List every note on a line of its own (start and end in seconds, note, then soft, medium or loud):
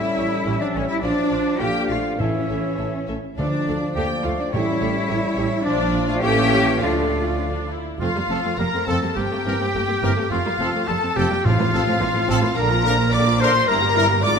0.00 0.62 G3 medium
0.00 1.00 G3 medium
0.00 0.49 A3 medium
0.00 1.03 C#4 medium
0.00 0.61 E4 medium
0.00 0.59 E5 medium
0.00 0.60 E5 medium
0.00 1.03 E5 medium
0.18 0.26 A1 medium
0.18 0.26 C#4 medium
0.18 0.26 G4 medium
0.18 0.27 A4 medium
0.46 0.55 A1 medium
0.46 1.02 G3 medium
0.46 0.54 C#4 medium
0.46 0.55 G4 medium
0.46 0.55 A4 medium
0.60 0.76 F3 medium
0.60 0.75 D4 medium
0.60 0.66 D5 medium
0.60 0.75 D5 medium
0.74 0.83 A1 medium
0.74 0.88 E3 medium
0.74 0.83 C#4 medium
0.74 0.89 C#4 medium
0.74 0.83 G4 medium
0.74 0.84 A4 medium
0.74 0.88 C#5 medium
0.74 0.89 C#5 medium
0.88 1.04 G3 medium
0.88 1.03 E4 medium
0.88 0.94 E5 medium
0.88 1.03 E5 medium
1.02 1.11 A#1 medium
1.02 1.61 F3 medium
1.02 2.19 F3 medium
1.02 1.61 F3 medium
1.02 2.17 D4 medium
1.02 1.11 D4 medium
1.02 1.59 D4 medium
1.02 1.11 F4 medium
1.02 1.58 D5 medium
1.02 1.11 D5 medium
1.02 1.59 D5 medium
1.31 1.40 A#1 medium
1.31 1.39 D4 medium
1.31 1.39 F4 medium
1.31 1.39 D5 medium
1.60 1.68 A#1 medium
1.60 2.20 D3 medium
1.60 1.89 A#3 medium
1.60 1.68 D4 medium
1.60 1.68 F4 medium
1.60 1.89 G4 medium
1.60 1.68 D5 medium
1.60 2.21 F5 medium
1.60 1.88 G5 medium
1.60 1.89 G5 loud
1.88 1.97 A#1 medium
1.88 2.03 A3 medium
1.88 1.97 D4 soft
1.88 1.97 F4 medium
1.88 2.19 F4 medium
1.88 1.96 D5 medium
1.88 2.18 F5 medium
1.88 2.19 F5 medium
2.19 2.27 A1 medium
2.19 3.05 A2 medium
2.19 3.08 E3 medium
2.19 3.07 E3 medium
2.19 2.27 A3 medium
2.19 3.07 C#4 medium
2.19 3.09 E4 medium
2.19 2.27 A4 medium
2.19 3.07 C#5 medium
2.19 3.09 C#5 medium
2.19 2.28 E5 medium
2.19 3.09 E5 medium
2.49 2.57 A1 medium
2.49 2.57 A3 soft
2.49 2.57 A4 medium
2.49 2.57 E5 medium
2.79 2.87 A1 medium
2.79 2.87 A3 medium
2.79 2.87 A4 soft
2.79 2.87 E5 soft
3.08 3.17 A1 medium
3.08 3.16 A3 soft
3.08 3.16 A4 soft
3.08 3.16 E5 soft
3.38 3.46 D2 medium
3.38 4.21 D3 medium
3.38 4.55 F3 medium
3.38 4.49 F3 medium
3.38 3.92 F3 medium
3.38 3.46 A3 medium
3.38 4.49 D4 medium
3.38 3.92 D4 medium
3.38 3.46 A4 medium
3.38 3.92 D5 medium
3.38 4.54 D5 medium
3.38 3.92 D5 medium
3.38 3.46 F5 medium
3.67 3.75 D2 medium
3.67 3.75 A3 medium
3.67 3.75 A4 medium
3.67 3.76 F5 medium
3.96 4.04 D2 medium
3.96 4.04 A3 medium
3.96 4.24 A#3 medium
3.96 4.04 G4 medium
3.96 4.04 A4 medium
3.96 4.04 F5 medium
3.96 4.25 G5 medium
4.24 4.33 D2 medium
4.24 4.33 A3 medium
4.24 4.41 A3 medium
4.24 4.30 F4 medium
4.24 4.33 A4 medium
4.24 4.32 F5 medium
4.24 4.39 F5 medium
4.24 4.40 F5 medium
4.40 4.56 F3 medium
4.40 4.45 D4 medium
4.40 4.54 D5 medium
4.52 4.61 A1 medium
4.52 5.33 A2 medium
4.52 5.64 G3 medium
4.52 5.63 G3 medium
4.52 5.64 G3 medium
4.52 4.61 A3 medium
4.52 5.65 C#4 medium
4.52 5.63 E4 loud
4.52 4.61 G4 medium
4.52 5.64 C#5 medium
4.52 4.62 C#5 medium
4.52 5.63 E5 medium
4.52 5.66 E5 medium
4.81 4.89 A1 medium
4.81 4.89 A3 medium
4.81 4.89 G4 medium
4.81 4.89 C#5 medium
5.09 5.17 A1 medium
5.09 5.17 A3 medium
5.09 5.17 G4 medium
5.09 5.17 C#5 medium
5.36 5.44 A1 medium
5.36 5.45 A3 medium
5.36 5.45 G4 medium
5.36 5.44 C#5 medium
5.64 6.19 A#1 medium
5.64 6.18 F3 medium
5.64 6.24 F3 medium
5.64 6.10 F3 medium
5.64 6.18 D4 medium
5.64 6.19 D4 medium
5.64 6.07 D4 loud
5.64 6.18 F4 medium
5.64 6.08 D5 medium
5.64 6.19 D5 medium
5.64 6.08 D5 medium
6.08 6.21 A3 medium
6.08 6.23 F4 loud
6.08 6.14 F5 medium
6.08 6.23 F5 medium
6.21 6.80 A1 medium
6.21 6.81 E3 medium
6.21 6.83 E3 medium
6.21 6.83 A#3 loud
6.21 6.81 C#4 medium
6.21 6.82 C#4 medium
6.21 6.80 G4 loud
6.21 6.80 A4 medium
6.21 6.81 C#5 medium
6.21 6.82 E5 medium
6.21 6.81 G5 loud
6.21 6.82 G5 loud
6.80 7.80 D2 medium
6.80 7.71 D3 medium
6.80 7.70 F3 medium
6.80 7.71 A3 medium
6.80 7.70 D4 medium
6.80 7.34 D4 medium
6.80 7.71 F4 medium
6.80 7.34 A4 medium
6.80 7.80 D5 medium
6.80 7.69 D5 medium
6.80 7.71 F5 medium
6.80 7.70 F5 medium
7.41 7.69 D4 medium
7.71 8.00 E4 medium
7.99 8.06 F1 medium
7.99 8.06 F2 medium
7.99 8.07 A3 medium
7.99 8.07 C4 medium
7.99 8.54 F4 medium
7.99 8.60 F4 medium
7.99 8.54 F4 medium
7.99 8.55 F5 medium
8.15 8.21 F2 medium
8.15 8.21 G3 medium
8.15 8.21 A#3 medium
8.29 8.35 F1 medium
8.29 8.35 F2 medium
8.29 8.39 F3 medium
8.29 8.36 A3 medium
8.29 8.35 C4 medium
8.29 8.40 C4 medium
8.29 8.40 A4 medium
8.43 8.49 F2 medium
8.43 8.50 A3 medium
8.43 8.50 C4 medium
8.58 8.64 F1 medium
8.58 8.64 F2 medium
8.58 8.65 G3 medium
8.58 8.65 A#3 medium
8.58 8.87 A#4 loud
8.58 8.88 A#4 medium
8.58 8.87 A#4 medium
8.58 8.88 A#5 loud
8.73 8.79 F2 medium
8.73 8.80 A3 medium
8.73 8.80 C4 medium
8.86 8.93 F1 medium
8.86 8.93 F2 medium
8.86 8.97 F3 medium
8.86 8.94 A3 medium
8.86 8.97 C4 medium
8.86 8.94 C4 medium
8.86 9.16 A4 medium
8.86 9.17 A4 medium
8.86 9.00 A4 medium
8.86 8.98 A4 medium
8.86 9.16 A5 medium
8.86 9.17 A5 medium
9.02 9.08 F2 medium
9.02 9.08 G3 medium
9.02 9.08 A#3 medium
9.16 9.22 G1 medium
9.16 9.23 G2 medium
9.16 9.23 A#3 medium
9.16 9.22 C4 medium
9.16 10.29 G4 medium
9.16 10.28 G4 medium
9.16 10.30 G4 medium
9.16 10.31 G5 loud
9.16 10.29 G5 medium
9.31 9.37 G2 medium
9.31 9.37 A3 medium
9.31 9.37 A#3 medium
9.45 9.52 G1 medium
9.45 9.52 G2 medium
9.45 9.55 E3 medium
9.45 9.51 A#3 medium
9.45 9.55 C4 medium
9.45 9.51 C4 medium
9.45 9.56 A#4 medium
9.59 9.66 G2 medium
9.59 9.65 A#3 medium
9.59 9.65 C4 medium
9.74 9.80 G1 medium
9.74 9.80 G2 medium
9.74 9.80 A3 medium
9.74 9.80 A#3 medium
9.88 9.94 G2 medium
9.88 9.94 A#3 medium
9.88 9.94 C4 medium
10.02 10.08 G1 medium
10.02 10.08 G2 medium
10.02 10.12 E3 medium
10.02 10.08 A#3 medium
10.02 10.12 C4 medium
10.02 10.08 C4 medium
10.02 10.12 A#4 medium
10.16 10.22 G2 medium
10.16 10.22 A3 medium
10.16 10.22 A#3 medium
10.30 10.37 F1 medium
10.30 10.36 F2 medium
10.30 10.36 A3 loud
10.30 10.36 C4 loud
10.30 10.87 F4 medium
10.30 10.88 F4 medium
10.30 10.89 F4 medium
10.30 10.87 F5 loud
10.30 10.87 F5 medium
10.45 10.51 F2 medium
10.45 10.51 G3 medium
10.45 10.51 A#3 medium
10.59 10.65 F1 medium
10.59 10.65 F2 medium
10.59 10.69 F3 medium
10.59 10.65 A3 medium
10.59 10.69 C4 medium
10.59 10.65 C4 medium
10.59 10.70 A4 medium
10.73 10.79 F2 medium
10.73 10.80 A3 medium
10.73 10.80 C4 medium
10.87 10.94 F1 medium
10.87 10.94 F2 medium
10.87 10.94 G3 medium
10.87 10.94 A#3 medium
10.87 11.18 A4 medium
10.87 11.17 A4 medium
10.87 11.16 A5 medium
10.87 11.17 A5 medium
11.02 11.08 F2 medium
11.02 11.09 A3 medium
11.02 11.09 C4 medium
11.16 11.23 F1 medium
11.16 11.22 F2 loud
11.16 11.26 F3 medium
11.16 11.22 A3 medium
11.16 11.26 C4 medium
11.16 11.22 C4 medium
11.16 11.46 G4 medium
11.16 11.45 G4 medium
11.16 11.46 G4 medium
11.16 11.27 A4 medium
11.16 11.45 G5 loud
11.16 11.45 G5 medium
11.30 11.36 F2 medium
11.30 11.37 G3 medium
11.30 11.37 A#3 medium
11.43 11.51 A1 medium
11.43 11.49 A2 medium
11.43 12.25 A2 loud
11.43 11.51 F3 medium
11.43 11.50 C4 medium
11.43 12.56 F4 medium
11.43 12.54 F4 loud
11.43 12.59 F4 loud
11.43 12.54 F5 loud
11.43 12.35 F5 medium
11.58 11.64 A2 medium
11.58 11.65 E3 medium
11.58 11.65 A#3 medium
11.72 11.79 A1 medium
11.72 11.78 A2 medium
11.72 11.83 F3 medium
11.72 11.79 F3 medium
11.72 11.83 C4 medium
11.72 11.79 C4 medium
11.72 11.83 A4 medium
11.86 11.92 A2 loud
11.86 11.92 F3 medium
11.86 11.92 C4 medium
12.00 12.06 A1 medium
12.00 12.06 A2 medium
12.00 12.06 E3 medium
12.00 12.06 A#3 medium
12.13 12.20 A2 medium
12.13 12.19 F3 medium
12.13 12.19 C4 medium
12.27 12.34 A1 loud
12.27 12.33 A2 medium
12.27 12.34 F3 medium
12.27 12.38 F3 medium
12.27 12.34 C4 medium
12.27 12.38 C4 medium
12.27 12.39 A4 medium
12.41 12.47 A2 medium
12.41 12.47 E3 medium
12.41 12.47 A#3 medium
12.56 13.64 A#1 medium
12.56 13.64 A#2 medium
12.56 12.69 D3 medium
12.56 12.69 D4 medium
12.56 13.12 A#4 medium
12.56 13.12 A#4 loud
12.56 13.14 A#4 medium
12.56 13.13 A#5 loud
12.56 13.12 A#5 loud
12.71 12.85 F3 medium
12.71 12.85 F4 medium
12.84 12.99 D3 medium
12.84 12.95 F3 medium
12.84 12.99 D4 medium
12.84 12.95 D4 medium
12.84 12.95 A#4 medium
12.98 13.13 F3 medium
12.98 13.13 F4 medium
13.12 13.25 D3 medium
13.12 13.25 D4 medium
13.12 13.40 D5 loud
13.12 13.41 D5 loud
13.12 13.42 D5 loud
13.12 13.40 D6 loud
13.12 13.41 D6 loud
13.25 13.40 F3 medium
13.25 13.40 F4 medium
13.39 13.54 D3 medium
13.39 13.50 F3 medium
13.39 13.54 D4 medium
13.39 13.50 D4 medium
13.39 13.50 A#4 loud
13.39 13.70 C5 loud
13.39 13.69 C5 loud
13.39 13.68 C5 loud
13.39 13.68 C6 loud
13.39 13.69 C6 loud
13.54 13.68 F3 medium
13.54 13.68 F4 medium
13.67 14.22 G1 medium
13.67 14.22 G2 medium
13.67 13.81 G3 medium
13.67 13.81 E4 medium
13.67 14.25 A#4 loud
13.67 14.23 A#4 loud
13.67 14.07 A#4 loud
13.67 14.22 A#5 loud
13.67 14.23 A#5 loud
13.81 13.95 A#3 medium
13.81 13.96 G4 medium
13.95 14.05 E3 medium
13.95 14.09 G3 medium
13.95 14.09 E4 medium
13.95 14.06 E4 medium
13.95 14.06 A#4 medium
14.09 14.23 A#3 medium
14.09 14.23 G4 medium
14.23 14.39 G#1 loud
14.23 14.39 G#2 medium
14.23 14.36 G#3 medium
14.23 14.36 F4 medium
14.23 14.39 D5 loud
14.23 14.39 D6 loud